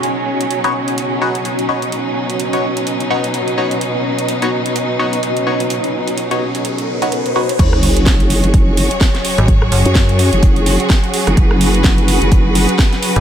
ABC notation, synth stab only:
X:1
M:4/4
L:1/16
Q:"Swing 16ths" 1/4=127
K:Bmix
V:1 name="Synth stab"
z4 z [B,DFc] z4 [B,DFc] z3 [B,DFc] z | z4 z [B,DFc] z4 [B,DFc] z3 [B,DFc] z | z4 z [B,DFc] z4 [B,DFc] z3 [B,DFc] z | z4 z [B,DFc] z4 z [B,DFc]3 [B,DFc] z |
z16 | z16 | z16 |]